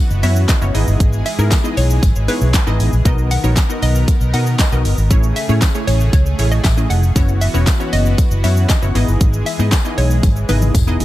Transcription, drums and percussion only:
0.10 shaker medium
0.23 open hi-hat medium
0.23 tambourine medium
0.23 shaker medium
0.36 shaker medium
0.49 kick loud
0.49 snare medium
0.49 clap loud
0.49 closed hi-hat medium
0.49 tambourine medium
0.49 shaker medium
0.62 shaker medium
0.75 open hi-hat medium
0.75 tambourine soft
0.75 shaker medium
0.88 shaker medium
1.00 kick loud
1.00 closed hi-hat medium
1.00 shaker medium
1.13 shaker medium
1.26 open hi-hat medium
1.26 tambourine medium
1.26 shaker medium
1.39 shaker medium
1.51 kick loud
1.51 snare loud
1.51 clap loud
1.51 closed hi-hat medium
1.51 tambourine medium
1.51 shaker medium
1.65 shaker medium
1.77 open hi-hat medium
1.77 tambourine medium
1.77 shaker soft
1.90 shaker medium
2.03 kick loud
2.03 closed hi-hat medium
2.03 tambourine soft
2.03 shaker medium
2.16 shaker medium
2.28 open hi-hat medium
2.28 tambourine soft
2.28 shaker medium
2.41 shaker medium
2.54 kick loud
2.54 snare loud
2.54 clap loud
2.54 closed hi-hat medium
2.54 tambourine medium
2.54 shaker medium
2.67 shaker medium
2.80 open hi-hat medium
2.80 tambourine soft
2.80 shaker medium
2.93 shaker medium
3.05 kick loud
3.05 closed hi-hat medium
3.05 shaker medium
3.18 shaker medium
3.31 open hi-hat medium
3.31 tambourine medium
3.31 shaker medium
3.44 shaker medium
3.56 kick loud
3.56 snare loud
3.56 clap loud
3.56 closed hi-hat medium
3.56 tambourine medium
3.56 shaker medium
3.70 shaker medium
3.82 open hi-hat medium
3.82 tambourine medium
3.82 shaker medium
3.95 shaker medium
4.08 kick loud
4.08 closed hi-hat medium
4.08 tambourine medium
4.08 shaker medium
4.21 shaker medium
4.34 open hi-hat medium
4.34 tambourine medium
4.34 shaker medium
4.46 shaker medium
4.59 kick loud
4.59 snare loud
4.59 clap loud
4.59 closed hi-hat medium
4.59 tambourine medium
4.59 shaker medium
4.72 shaker medium
4.85 open hi-hat medium
4.85 tambourine soft
4.85 shaker medium
4.98 shaker medium
5.11 kick loud
5.11 closed hi-hat medium
5.11 shaker medium
5.23 shaker medium
5.36 open hi-hat medium
5.36 tambourine medium
5.36 shaker medium
5.49 shaker medium
5.61 kick loud
5.61 snare loud
5.61 clap loud
5.61 closed hi-hat medium
5.61 tambourine medium
5.61 shaker medium
5.75 shaker medium
5.87 open hi-hat medium
5.87 tambourine medium
5.87 shaker medium
6.00 shaker medium
6.13 kick loud
6.13 closed hi-hat medium
6.13 tambourine soft
6.13 shaker medium
6.26 shaker medium
6.39 open hi-hat medium
6.39 tambourine medium
6.39 shaker medium
6.52 shaker medium
6.64 kick loud
6.64 snare medium
6.64 clap loud
6.64 closed hi-hat medium
6.64 tambourine medium
6.64 shaker medium
6.77 shaker medium
6.90 open hi-hat medium
6.90 shaker medium
7.03 shaker medium
7.16 kick loud
7.16 closed hi-hat medium
7.16 tambourine soft
7.16 shaker medium
7.28 shaker soft
7.41 open hi-hat medium
7.41 tambourine medium
7.41 shaker medium
7.54 shaker medium
7.67 kick loud
7.67 snare loud
7.67 clap loud
7.67 closed hi-hat medium
7.67 tambourine medium
7.67 shaker medium
7.80 shaker medium
7.93 open hi-hat medium
7.93 tambourine medium
7.93 shaker soft
8.06 shaker medium
8.18 kick loud
8.18 closed hi-hat medium
8.18 tambourine soft
8.18 shaker medium
8.31 shaker medium
8.44 open hi-hat medium
8.44 tambourine medium
8.44 shaker medium
8.57 shaker medium
8.69 kick loud
8.69 snare medium
8.69 clap loud
8.69 closed hi-hat medium
8.69 tambourine medium
8.69 shaker medium
8.82 shaker medium
8.95 open hi-hat medium
8.95 tambourine soft
8.95 shaker medium
9.08 shaker medium
9.21 kick loud
9.21 closed hi-hat medium
9.21 shaker medium
9.33 shaker medium
9.46 open hi-hat medium
9.46 tambourine medium
9.46 shaker medium
9.59 shaker medium
9.72 kick loud
9.72 snare medium
9.72 clap loud
9.72 closed hi-hat medium
9.72 tambourine medium
9.72 shaker medium
9.85 shaker medium
9.98 open hi-hat medium
9.98 tambourine medium
9.98 shaker soft
10.11 shaker medium
10.23 kick loud
10.23 closed hi-hat medium
10.23 high tom medium
10.23 tambourine soft
10.23 shaker medium
10.36 shaker medium
10.49 open hi-hat medium
10.49 mid tom medium
10.49 tambourine medium
10.49 shaker medium
10.62 mid tom medium
10.62 shaker medium
10.75 kick loud
10.75 closed hi-hat medium
10.75 mid tom loud
10.75 tambourine medium
10.75 shaker medium
10.87 shaker medium
11.00 floor tom loud
11.00 open hi-hat medium
11.00 shaker medium

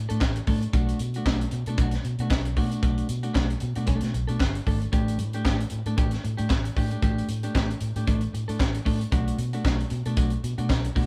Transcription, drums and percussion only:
0.10 closed hi-hat soft
0.21 kick loud
0.21 snare medium
0.21 clap medium
0.36 closed hi-hat soft
0.47 kick medium
0.47 open hi-hat soft
0.62 closed hi-hat soft
0.73 kick loud
0.73 closed hi-hat medium
0.89 closed hi-hat soft
0.99 closed hi-hat medium
1.14 closed hi-hat soft
1.26 kick loud
1.26 snare loud
1.26 clap medium
1.41 closed hi-hat soft
1.51 closed hi-hat medium
1.66 closed hi-hat soft
1.78 kick loud
1.78 closed hi-hat medium
1.91 snare soft
1.91 closed hi-hat soft
2.05 closed hi-hat medium
2.19 closed hi-hat soft
2.30 kick loud
2.30 snare loud
2.30 clap medium
2.45 closed hi-hat medium
2.57 kick medium
2.57 open hi-hat medium
2.72 closed hi-hat soft
2.83 kick loud
2.83 closed hi-hat medium
2.98 closed hi-hat soft
3.09 closed hi-hat medium
3.23 closed hi-hat soft
3.35 kick medium
3.35 snare loud
3.35 clap medium
3.50 closed hi-hat soft
3.60 closed hi-hat medium
3.76 closed hi-hat soft
3.87 kick loud
3.87 closed hi-hat medium
4.01 snare soft
4.01 closed hi-hat soft
4.14 closed hi-hat soft
4.29 closed hi-hat soft
4.40 kick loud
4.40 snare loud
4.40 clap medium
4.55 closed hi-hat soft
4.67 kick medium
4.67 open hi-hat medium
4.82 closed hi-hat soft
4.93 kick loud
4.93 closed hi-hat medium
5.08 closed hi-hat soft
5.19 closed hi-hat medium
5.33 closed hi-hat soft
5.45 kick loud
5.45 snare loud
5.45 clap medium
5.60 closed hi-hat soft
5.70 closed hi-hat medium
5.86 closed hi-hat soft
5.98 kick loud
5.98 closed hi-hat medium
6.11 snare soft
6.11 closed hi-hat soft
6.25 closed hi-hat medium
6.38 closed hi-hat soft
6.50 kick loud
6.50 snare loud
6.50 clap medium
6.65 closed hi-hat soft
6.77 kick medium
6.77 open hi-hat medium
6.91 closed hi-hat soft
7.02 kick loud
7.02 closed hi-hat medium
7.18 closed hi-hat soft
7.29 closed hi-hat medium
7.43 closed hi-hat soft
7.55 kick loud
7.55 snare loud
7.55 clap medium
7.71 closed hi-hat soft
7.81 closed hi-hat medium
7.96 closed hi-hat soft
8.07 kick loud
8.07 closed hi-hat medium
8.21 closed hi-hat soft
8.35 closed hi-hat medium
8.49 closed hi-hat soft
8.60 kick loud
8.60 snare loud
8.60 clap medium
8.75 closed hi-hat soft
8.86 kick medium
8.86 open hi-hat medium
9.01 closed hi-hat soft
9.12 kick loud
9.12 closed hi-hat medium
9.28 closed hi-hat soft
9.39 closed hi-hat medium
9.53 closed hi-hat soft
9.65 kick loud
9.65 snare loud
9.65 clap medium
9.80 closed hi-hat soft
9.90 closed hi-hat medium
10.06 closed hi-hat soft
10.17 kick loud
10.17 closed hi-hat medium
10.30 closed hi-hat soft
10.44 closed hi-hat medium
10.58 closed hi-hat soft
10.70 kick loud
10.70 snare loud
10.70 clap medium
10.85 closed hi-hat soft
10.96 kick medium
10.96 open hi-hat medium

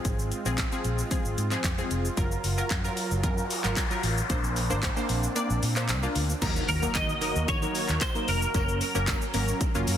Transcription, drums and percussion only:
0.05 kick loud
0.05 closed hi-hat medium
0.05 shaker medium
0.19 shaker medium
0.32 closed hi-hat soft
0.32 shaker soft
0.46 shaker medium
0.58 kick loud
0.58 clap loud
0.58 closed hi-hat medium
0.58 shaker medium
0.72 shaker medium
0.84 closed hi-hat medium
0.84 shaker medium
0.98 shaker medium
1.11 kick loud
1.11 closed hi-hat medium
1.11 shaker medium
1.25 shaker medium
1.38 closed hi-hat medium
1.38 shaker medium
1.51 clap medium
1.51 shaker medium
1.64 kick loud
1.64 clap loud
1.64 closed hi-hat medium
1.64 shaker medium
1.78 shaker medium
1.91 closed hi-hat medium
1.91 shaker medium
2.05 shaker medium
2.17 kick loud
2.17 closed hi-hat medium
2.17 shaker medium
2.32 shaker medium
2.44 open hi-hat medium
2.44 shaker soft
2.58 shaker medium
2.70 kick loud
2.70 clap loud
2.70 closed hi-hat medium
2.70 shaker medium
2.85 shaker medium
2.97 open hi-hat medium
2.97 shaker medium
3.11 shaker medium
3.24 kick loud
3.24 closed hi-hat medium
3.24 shaker medium
3.38 shaker medium
3.50 open hi-hat medium
3.50 shaker medium
3.64 clap medium
3.64 shaker medium
3.77 kick loud
3.77 clap loud
3.77 closed hi-hat medium
3.77 shaker medium
3.91 shaker medium
4.03 open hi-hat medium
4.03 shaker medium
4.18 shaker medium
4.30 kick loud
4.30 closed hi-hat medium
4.30 shaker medium
4.44 shaker medium
4.56 open hi-hat medium
4.56 shaker soft
4.70 shaker medium
4.83 kick loud
4.83 clap loud
4.83 closed hi-hat medium
4.83 shaker medium
4.97 shaker medium
5.09 open hi-hat medium
5.09 shaker medium
5.23 shaker medium
5.36 closed hi-hat medium
5.36 shaker medium
5.50 shaker medium
5.63 open hi-hat medium
5.63 shaker medium
5.76 clap medium
5.76 shaker medium
5.89 clap loud
5.89 closed hi-hat medium
5.89 shaker medium
6.03 shaker medium
6.15 open hi-hat medium
6.15 shaker medium
6.30 shaker medium
6.42 kick loud
6.42 closed hi-hat medium
6.42 crash loud
6.42 tambourine medium
6.42 shaker medium
6.56 shaker medium
6.68 open hi-hat medium
6.68 shaker medium
6.83 shaker medium
6.95 kick loud
6.95 clap loud
6.95 closed hi-hat medium
6.95 tambourine loud
6.95 shaker medium
7.09 shaker medium
7.21 open hi-hat medium
7.21 tambourine medium
7.21 shaker medium
7.36 shaker medium
7.48 kick loud
7.48 closed hi-hat medium
7.48 tambourine soft
7.48 shaker medium
7.62 shaker medium
7.74 open hi-hat medium
7.74 tambourine medium
7.74 shaker medium
7.89 clap medium
7.89 shaker medium
8.01 kick loud
8.01 clap loud
8.01 closed hi-hat medium
8.01 tambourine medium
8.01 shaker loud
8.15 shaker medium
8.28 open hi-hat medium
8.28 tambourine medium
8.28 shaker medium
8.42 shaker medium
8.54 kick loud
8.54 closed hi-hat medium
8.54 tambourine medium
8.54 shaker medium
8.69 shaker medium
8.81 open hi-hat medium
8.81 shaker soft
8.95 shaker medium
9.07 kick loud
9.07 clap loud
9.07 closed hi-hat medium
9.07 tambourine loud
9.07 shaker medium
9.22 shaker medium
9.34 open hi-hat medium
9.34 tambourine soft
9.34 shaker medium
9.48 shaker medium
9.61 kick loud
9.61 closed hi-hat medium
9.61 shaker medium
9.75 shaker medium
9.87 open hi-hat medium
9.87 tambourine medium
9.87 shaker medium

